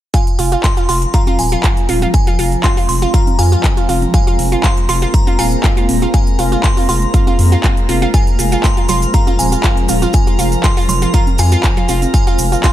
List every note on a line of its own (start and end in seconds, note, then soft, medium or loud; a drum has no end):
0.14 4.10 F3 medium
0.14 12.10 G#3 medium
0.14 12.10 C4 medium
0.14 0.20 F4 medium
0.14 12.73 A#4 medium
0.14 0.65 G#5 medium
0.14 12.73 A#5 medium
0.14 kick loud
0.14 closed hi-hat medium
0.27 closed hi-hat soft
0.39 0.56 F1 loud
0.39 0.45 F4 medium
0.39 open hi-hat loud
0.52 0.58 F4 medium
0.52 closed hi-hat soft
0.64 0.87 C6 loud
0.64 kick loud
0.64 clap loud
0.64 closed hi-hat medium
0.77 0.83 F4 medium
0.77 closed hi-hat soft
0.89 1.06 F1 medium
0.89 0.95 F4 loud
0.89 1.15 C6 loud
0.89 open hi-hat medium
1.02 closed hi-hat soft
1.14 1.20 F4 medium
1.14 1.40 A#5 medium
1.14 kick loud
1.14 closed hi-hat medium
1.27 1.33 F4 loud
1.27 closed hi-hat soft
1.27 high conga medium
1.39 1.56 D#1 medium
1.39 1.85 G#5 medium
1.39 open hi-hat medium
1.52 1.58 F4 medium
1.52 closed hi-hat soft
1.64 1.70 F4 medium
1.64 kick loud
1.64 clap loud
1.64 closed hi-hat medium
1.77 closed hi-hat soft
1.89 2.06 D#1 medium
1.89 1.95 F4 medium
1.89 open hi-hat loud
1.89 high conga medium
2.02 2.08 F4 medium
2.02 closed hi-hat soft
2.02 high conga medium
2.14 2.60 G#5 medium
2.14 kick loud
2.14 closed hi-hat medium
2.27 2.33 F4 loud
2.27 closed hi-hat soft
2.39 2.56 F1 medium
2.39 2.45 F4 loud
2.39 open hi-hat loud
2.52 closed hi-hat soft
2.64 2.70 F4 loud
2.64 2.88 C6 loud
2.64 kick loud
2.64 clap loud
2.64 closed hi-hat medium
2.77 2.83 F4 medium
2.77 open hi-hat medium
2.89 3.06 F1 medium
2.89 3.12 C6 loud
2.89 open hi-hat loud
3.02 3.08 F4 loud
3.02 closed hi-hat soft
3.14 3.20 F4 loud
3.14 3.40 A#5 medium
3.14 kick loud
3.14 closed hi-hat medium
3.27 closed hi-hat soft
3.27 high conga medium
3.39 3.56 F2 loud
3.39 3.45 F4 loud
3.39 3.85 G#5 medium
3.39 open hi-hat loud
3.52 3.58 F4 loud
3.52 closed hi-hat soft
3.64 kick loud
3.64 clap loud
3.64 closed hi-hat medium
3.77 3.83 F4 medium
3.77 closed hi-hat soft
3.89 4.06 F1 medium
3.89 3.95 F4 loud
3.89 open hi-hat loud
3.89 high conga medium
4.02 closed hi-hat soft
4.02 high conga medium
4.14 8.10 A#3 medium
4.14 4.20 F4 medium
4.14 4.65 G#5 medium
4.14 kick loud
4.14 closed hi-hat medium
4.27 4.33 F4 medium
4.27 closed hi-hat soft
4.39 4.56 F1 loud
4.39 open hi-hat loud
4.52 4.58 F4 medium
4.52 closed hi-hat soft
4.64 4.70 F4 medium
4.64 4.75 C6 loud
4.64 kick loud
4.64 clap loud
4.64 closed hi-hat medium
4.77 closed hi-hat soft
4.89 5.06 F1 loud
4.89 4.95 F4 loud
4.89 5.15 C6 medium
4.89 open hi-hat loud
5.02 5.08 F4 loud
5.02 closed hi-hat soft
5.14 5.40 A#5 loud
5.14 kick loud
5.14 closed hi-hat medium
5.27 5.33 F4 loud
5.27 closed hi-hat soft
5.27 high conga medium
5.39 5.56 D#1 medium
5.39 5.45 F4 loud
5.39 5.85 G#5 medium
5.39 open hi-hat loud
5.52 closed hi-hat soft
5.64 5.70 F4 loud
5.64 kick loud
5.64 clap loud
5.64 closed hi-hat medium
5.77 5.83 F4 medium
5.77 closed hi-hat soft
5.89 6.06 D#1 medium
5.89 open hi-hat loud
5.89 high conga medium
6.02 6.08 F4 loud
6.02 closed hi-hat soft
6.02 high conga medium
6.14 6.20 F4 medium
6.14 6.65 G#5 medium
6.14 kick loud
6.14 closed hi-hat medium
6.27 closed hi-hat soft
6.39 6.56 F1 medium
6.39 6.45 F4 loud
6.39 open hi-hat loud
6.52 6.58 F4 medium
6.52 closed hi-hat soft
6.64 6.75 C6 loud
6.64 kick loud
6.64 clap loud
6.64 closed hi-hat medium
6.77 6.83 F4 medium
6.77 open hi-hat medium
6.89 7.06 F1 medium
6.89 6.95 F4 loud
6.89 7.85 C6 medium
6.89 open hi-hat loud
7.02 closed hi-hat soft
7.14 7.20 F4 loud
7.14 kick loud
7.14 closed hi-hat medium
7.27 7.33 F4 loud
7.27 closed hi-hat soft
7.27 high conga medium
7.39 7.56 F2 loud
7.39 open hi-hat loud
7.52 7.58 F4 loud
7.52 closed hi-hat soft
7.64 7.70 F4 loud
7.64 kick loud
7.64 clap loud
7.64 closed hi-hat medium
7.77 closed hi-hat soft
7.89 8.06 F1 medium
7.89 7.95 F4 loud
7.89 open hi-hat loud
7.89 high conga medium
8.02 8.08 F4 loud
8.02 closed hi-hat soft
8.02 high conga medium
8.14 12.10 F3 medium
8.14 8.20 F4 medium
8.14 8.65 G#5 medium
8.14 kick loud
8.14 closed hi-hat medium
8.14 cabasa soft
8.27 closed hi-hat soft
8.39 8.56 F1 loud
8.39 8.48 F4 medium
8.39 open hi-hat loud
8.39 cabasa medium
8.52 8.58 F4 medium
8.52 closed hi-hat soft
8.52 cabasa soft
8.64 8.88 C6 loud
8.64 kick loud
8.64 clap loud
8.64 closed hi-hat medium
8.64 cabasa soft
8.77 8.86 F4 medium
8.77 closed hi-hat soft
8.89 9.06 F1 medium
8.89 8.95 F4 loud
8.89 9.15 C6 loud
8.89 open hi-hat loud
8.89 low conga medium
8.89 cabasa medium
9.02 closed hi-hat soft
9.02 cabasa soft
9.14 9.23 F4 medium
9.14 9.37 A#5 medium
9.14 kick loud
9.14 closed hi-hat medium
9.14 cabasa soft
9.27 9.33 F4 loud
9.27 closed hi-hat soft
9.27 high conga medium
9.39 9.56 D#1 medium
9.39 9.85 G#5 medium
9.39 open hi-hat loud
9.39 cabasa medium
9.52 9.61 F4 medium
9.52 closed hi-hat soft
9.52 cabasa medium
9.64 9.70 F4 medium
9.64 kick loud
9.64 clap loud
9.64 closed hi-hat medium
9.64 cabasa soft
9.77 closed hi-hat soft
9.89 10.06 D#1 medium
9.89 9.98 F4 medium
9.89 open hi-hat loud
9.89 high conga medium
9.89 cabasa medium
10.02 10.08 F4 loud
10.02 closed hi-hat soft
10.02 high conga medium
10.02 cabasa medium
10.13 10.60 G#5 medium
10.13 kick loud
10.13 closed hi-hat medium
10.13 cabasa soft
10.27 10.36 F4 medium
10.27 closed hi-hat soft
10.39 10.56 F1 medium
10.39 10.45 F4 medium
10.39 open hi-hat medium
10.39 cabasa medium
10.52 closed hi-hat soft
10.52 cabasa soft
10.64 10.73 F4 medium
10.64 10.87 C6 loud
10.64 kick loud
10.64 clap loud
10.64 closed hi-hat medium
10.64 cabasa soft
10.77 10.83 F4 loud
10.77 open hi-hat medium
10.89 11.06 F1 medium
10.89 11.15 C6 loud
10.89 open hi-hat loud
10.89 low conga medium
10.89 cabasa medium
11.02 11.11 F4 medium
11.02 closed hi-hat soft
11.02 cabasa soft
11.14 11.20 F4 loud
11.14 11.25 A#5 medium
11.14 kick loud
11.14 closed hi-hat medium
11.14 cabasa soft
11.27 closed hi-hat soft
11.27 high conga medium
11.38 11.56 F2 loud
11.38 11.48 F4 medium
11.38 11.85 G#5 medium
11.38 open hi-hat medium
11.38 cabasa medium
11.52 11.58 F4 loud
11.52 closed hi-hat soft
11.52 cabasa soft
11.64 kick loud
11.64 clap loud
11.64 closed hi-hat medium
11.64 cabasa soft
11.77 11.86 F4 medium
11.77 closed hi-hat soft
11.77 low conga medium
11.89 12.06 F1 loud
11.89 11.95 F4 loud
11.89 open hi-hat loud
11.89 high conga medium
11.89 cabasa medium
12.02 closed hi-hat soft
12.02 high conga medium
12.02 cabasa soft
12.14 12.73 G#3 medium
12.14 12.73 A#3 medium
12.14 12.73 C4 medium
12.14 12.23 F4 medium
12.14 12.65 G#5 medium
12.14 kick loud
12.14 closed hi-hat medium
12.14 cabasa soft
12.27 12.33 F4 loud
12.27 closed hi-hat soft
12.39 12.56 F1 loud
12.39 open hi-hat loud
12.39 cabasa medium
12.52 12.61 F4 medium
12.52 closed hi-hat soft
12.52 cabasa soft
12.63 12.70 F4 loud
12.63 12.73 C6 loud
12.63 kick medium
12.63 clap loud
12.63 closed hi-hat medium
12.63 cabasa soft